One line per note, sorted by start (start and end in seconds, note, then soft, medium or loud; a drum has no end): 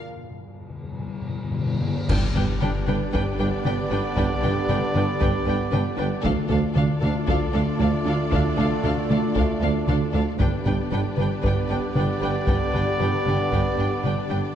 0.01 0.08 G2 soft
0.09 0.15 G2 soft
0.17 0.23 G2 soft
0.24 0.30 G2 soft
0.31 0.37 G2 soft
0.38 0.45 G2 soft
0.46 0.52 G2 soft
0.53 0.60 G2 soft
0.61 0.68 G2 soft
0.70 0.75 G2 soft
0.76 0.83 G2 soft
0.84 0.91 G2 medium
0.92 0.98 G2 medium
0.99 1.06 G2 medium
1.07 1.13 G2 medium
1.14 1.20 G2 medium
1.22 1.28 G2 medium
1.29 1.34 G2 medium
1.35 1.43 G2 medium
1.44 1.50 G2 medium
1.51 1.58 G2 medium
1.59 1.65 G2 medium
1.66 1.72 G2 medium
1.74 1.79 G2 medium
1.81 1.87 G2 medium
1.88 1.94 G2 medium
1.96 2.03 G2 medium
2.08 2.16 G1 medium
2.08 2.20 G1 medium
2.08 2.17 G2 medium
2.08 6.21 D3 medium
2.08 6.21 B3 medium
2.08 2.17 D4 medium
2.08 6.20 D4 medium
2.08 6.21 D4 medium
2.08 6.20 G4 medium
2.08 6.21 G4 medium
2.08 2.17 B4 medium
2.08 6.21 B4 medium
2.08 6.20 D5 medium
2.08 6.21 D5 medium
2.08 2.18 G5 medium
2.08 concert bass drum medium
2.08 taiko loud
2.08 crash medium
2.35 2.46 G1 medium
2.35 2.43 G1 medium
2.35 2.43 G2 medium
2.35 2.43 D4 medium
2.35 2.43 B4 medium
2.35 2.44 G5 medium
2.35 taiko mid medium
2.60 2.71 G1 medium
2.60 2.69 G1 medium
2.60 2.69 G2 medium
2.60 2.69 D4 medium
2.60 2.68 B4 medium
2.60 2.69 G5 medium
2.60 taiko mid medium
2.87 2.97 G1 medium
2.87 2.95 G1 medium
2.87 2.95 G2 medium
2.87 2.95 D4 medium
2.87 2.95 B4 medium
2.87 2.95 G5 medium
2.87 taiko mid medium
3.12 3.23 G1 medium
3.12 3.21 G1 medium
3.12 3.21 G2 medium
3.12 3.21 D4 medium
3.12 3.20 B4 medium
3.12 3.21 G5 medium
3.12 taiko medium
3.39 3.50 G1 medium
3.39 3.48 G1 medium
3.39 3.47 G2 medium
3.39 3.47 D4 medium
3.39 3.47 B4 medium
3.39 3.47 G5 medium
3.64 3.76 G1 medium
3.64 3.73 G1 medium
3.64 3.73 G2 medium
3.64 3.73 D4 medium
3.64 3.72 B4 medium
3.64 3.74 G5 medium
3.64 taiko mid medium
3.91 3.99 G1 medium
3.91 4.02 G1 medium
3.91 4.00 G2 medium
3.91 3.99 D4 medium
3.91 3.99 B4 medium
3.91 3.99 G5 medium
4.16 4.25 G1 medium
4.16 4.27 G1 medium
4.16 4.25 G2 medium
4.16 4.25 D4 medium
4.16 4.24 B4 medium
4.16 4.25 G5 medium
4.16 taiko medium
4.43 4.51 G1 medium
4.43 4.53 G1 medium
4.43 4.51 G2 medium
4.43 4.51 D4 medium
4.43 4.51 B4 medium
4.43 4.51 G5 medium
4.43 taiko mid soft
4.68 4.76 G1 medium
4.68 4.79 G1 medium
4.68 4.77 G2 medium
4.68 4.77 D4 medium
4.68 4.76 B4 medium
4.68 4.77 G5 medium
4.68 taiko mid medium
4.94 5.03 G1 medium
4.94 5.05 G1 medium
4.94 5.03 G2 medium
4.94 5.03 D4 medium
4.94 5.02 B4 medium
4.94 5.04 G5 medium
4.94 taiko mid medium
5.20 5.31 G1 medium
5.20 5.29 G1 medium
5.20 5.29 G2 medium
5.20 5.28 D4 medium
5.20 5.28 B4 medium
5.20 5.30 G5 medium
5.20 taiko medium
5.46 5.57 G1 medium
5.46 5.55 G1 medium
5.46 5.55 G2 medium
5.46 5.54 D4 medium
5.46 5.54 B4 medium
5.46 5.56 G5 medium
5.71 5.83 G1 medium
5.71 5.81 G1 medium
5.71 5.81 G2 medium
5.71 5.79 D4 medium
5.71 5.79 B4 medium
5.71 5.81 G5 medium
5.71 taiko mid medium
5.97 6.09 G1 medium
5.97 6.07 G1 medium
5.97 6.06 G2 medium
5.97 6.05 D4 medium
5.97 6.05 B4 medium
5.97 6.07 G5 medium
6.22 6.32 D2 medium
6.22 6.35 D2 medium
6.22 6.98 D3 medium
6.22 10.23 D3 medium
6.22 10.23 A3 loud
6.22 10.23 D4 medium
6.22 6.32 D4 medium
6.22 10.36 D4 medium
6.22 10.23 F4 medium
6.22 6.30 A4 medium
6.22 10.40 A4 medium
6.22 10.08 D5 medium
6.22 10.36 D5 medium
6.22 6.33 F5 medium
6.22 taiko medium
6.26 10.40 F4 medium
6.48 6.60 D2 medium
6.48 6.58 D2 medium
6.48 6.58 D4 medium
6.48 6.56 A4 medium
6.48 6.59 F5 medium
6.48 taiko mid soft
6.74 6.84 D2 medium
6.74 6.87 D2 medium
6.74 6.84 D2 medium
6.74 6.84 D4 medium
6.74 6.82 A4 medium
6.74 6.85 F5 medium
6.74 taiko mid medium
7.01 7.10 D2 medium
7.01 7.12 D2 medium
7.01 7.11 D4 medium
7.01 7.09 A4 medium
7.01 7.11 F5 medium
7.01 taiko mid medium
7.27 7.36 D2 medium
7.27 7.39 D2 medium
7.27 7.36 D4 medium
7.27 7.35 A4 medium
7.27 7.38 F5 medium
7.27 taiko medium
7.53 7.62 D2 medium
7.53 7.64 D2 medium
7.53 7.62 D4 medium
7.53 7.61 A4 medium
7.53 7.63 F5 medium
7.79 7.88 D2 medium
7.79 7.91 D2 medium
7.79 7.87 D4 medium
7.79 7.87 A4 medium
7.79 7.89 F5 medium
7.79 taiko mid medium
8.05 8.14 D2 medium
8.05 8.16 D2 medium
8.05 8.14 D2 medium
8.05 8.14 D4 medium
8.05 8.13 A4 medium
8.05 8.16 F5 medium
8.32 8.40 D2 medium
8.32 8.43 D2 medium
8.32 8.40 D4 medium
8.32 8.40 A4 medium
8.32 8.42 F5 medium
8.32 taiko loud
8.57 8.66 D2 medium
8.57 8.68 D2 medium
8.57 8.65 D4 medium
8.57 8.65 A4 medium
8.57 8.68 F5 medium
8.57 taiko mid soft
8.83 8.92 D2 medium
8.83 8.95 D2 medium
8.83 8.91 D4 medium
8.83 8.91 A4 medium
8.83 8.93 F5 medium
8.83 taiko mid medium
9.09 9.17 D2 medium
9.09 9.18 D2 medium
9.09 9.20 D2 medium
9.09 9.18 D4 medium
9.09 9.18 A4 medium
9.09 9.19 F5 medium
9.09 taiko mid medium
9.34 9.44 D2 medium
9.34 9.47 D2 medium
9.34 9.43 D4 medium
9.34 9.42 A4 medium
9.34 9.45 F5 medium
9.34 taiko medium
9.61 9.70 D2 medium
9.61 9.72 D2 medium
9.61 9.70 D4 medium
9.61 9.69 A4 medium
9.61 9.70 F5 medium
9.87 9.95 D2 medium
9.87 9.96 D2 medium
9.87 9.99 D2 medium
9.87 9.96 D4 medium
9.87 9.96 A4 medium
9.87 9.96 F5 medium
9.87 taiko mid medium
10.13 10.21 D2 medium
10.13 10.22 D2 medium
10.13 10.25 D2 medium
10.13 10.21 D4 medium
10.13 10.21 A4 medium
10.13 10.22 F5 medium
10.39 10.47 G1 medium
10.39 10.50 G1 medium
10.39 10.47 G2 medium
10.39 11.14 G2 medium
10.39 14.52 D3 medium
10.39 14.52 B3 medium
10.39 14.52 D4 medium
10.39 14.55 D4 medium
10.39 10.48 D4 medium
10.39 14.55 G4 medium
10.39 14.52 G4 medium
10.39 10.47 B4 medium
10.39 14.55 B4 medium
10.39 14.55 D5 medium
10.39 14.52 D5 medium
10.39 10.48 G5 medium
10.39 taiko medium
10.65 10.74 G1 medium
10.65 10.76 G1 medium
10.65 10.74 G2 medium
10.65 10.74 D4 medium
10.65 10.73 B4 medium
10.65 10.74 G5 medium
10.65 taiko mid soft
10.91 11.00 G1 medium
10.91 11.02 G1 medium
10.91 10.99 G2 medium
10.91 11.00 D4 medium
10.91 10.99 B4 medium
10.91 11.00 G5 medium
10.91 taiko mid medium
11.16 11.25 G1 medium
11.16 11.28 G1 medium
11.16 11.25 G2 medium
11.16 11.26 D4 medium
11.16 11.24 B4 medium
11.16 11.28 G5 medium
11.16 taiko mid medium
11.42 11.54 G1 medium
11.42 11.52 G1 medium
11.42 11.52 G2 medium
11.42 11.51 D4 medium
11.42 11.50 B4 medium
11.42 11.53 G5 medium
11.42 taiko medium
11.68 11.80 G1 medium
11.68 11.78 G1 medium
11.68 11.77 G2 medium
11.68 11.77 D4 medium
11.68 11.76 B4 medium
11.68 11.78 G5 medium
11.94 12.04 G1 medium
11.94 12.06 G1 medium
11.94 12.03 G2 medium
11.94 12.04 D4 medium
11.94 12.02 B4 medium
11.94 12.06 G5 medium
11.94 taiko mid medium
12.20 12.32 G1 medium
12.20 12.30 G1 medium
12.20 12.30 G2 medium
12.20 12.30 D4 medium
12.20 12.28 B4 medium
12.20 12.31 G5 medium
12.47 12.55 G1 medium
12.47 12.58 G1 medium
12.47 12.55 G2 medium
12.47 12.56 D4 medium
12.47 12.56 B4 medium
12.47 12.55 G5 medium
12.47 taiko loud
12.73 12.81 G1 medium
12.73 12.84 G1 medium
12.73 12.81 G2 medium
12.73 12.82 D4 medium
12.73 12.81 B4 medium
12.73 12.83 G5 medium
12.73 taiko mid soft
12.99 13.10 G1 medium
12.99 13.08 G1 medium
12.99 13.07 G2 medium
12.99 13.07 D4 medium
12.99 13.07 B4 medium
12.99 13.09 G5 medium
12.99 taiko mid medium
13.25 13.36 G1 medium
13.25 13.34 G1 medium
13.25 13.33 G2 medium
13.25 13.34 D4 medium
13.25 13.35 B4 soft
13.25 13.36 G5 medium
13.25 taiko mid soft
13.51 13.62 G1 medium
13.51 13.60 G1 medium
13.51 13.59 G2 medium
13.51 13.60 D4 medium
13.51 13.60 B4 medium
13.51 13.61 G5 medium
13.51 taiko medium
13.77 13.88 G1 medium
13.77 13.86 G1 medium
13.77 13.86 G2 medium
13.77 13.86 D4 medium
13.77 13.85 B4 medium
13.77 13.88 G5 medium
14.03 14.14 G1 medium
14.03 14.12 G1 medium
14.03 14.12 G2 medium
14.03 14.11 D4 medium
14.03 14.11 B4 medium
14.03 14.13 G5 medium
14.03 taiko mid medium
14.29 14.38 G1 medium
14.29 14.40 G1 medium
14.29 14.37 G2 medium
14.29 14.37 D4 medium
14.29 14.39 B4 medium
14.29 14.38 G5 medium